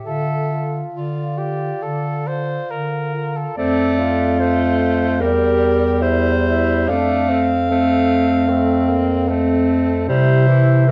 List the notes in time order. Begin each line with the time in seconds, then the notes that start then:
0.05 D3 F4 A4 E5
0.52 F4
0.94 D3 F4 D5
1.38 F4 G4
1.82 D3 A4
2.27 F4 C5
2.70 D3 A#4
3.14 F4
3.37 A4
3.56 F2 A3 C4 D5
3.99 F4
4.40 A3 C5
5.20 E2 G3 G4 A#4
6.01 G3 E4 C5
6.45 E4
6.88 F2 A3 D4 F5
7.29 C4
7.70 A3 C4
8.49 A3 C4
8.89 A#3
9.29 A3 C4
10.08 C3 G3 E4 C5
10.48 E3
10.87 E3 A#4